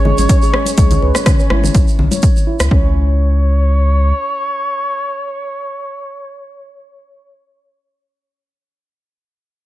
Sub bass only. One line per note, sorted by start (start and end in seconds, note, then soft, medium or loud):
0.00 0.13 G#1 loud
0.18 0.27 G#1 medium
0.78 0.97 C#2 loud
1.02 1.12 C#2 medium
1.50 1.69 G#1 loud
1.74 1.84 B1 medium
1.99 2.09 B1 medium
2.60 2.69 C#2 loud
2.71 4.12 C#2 medium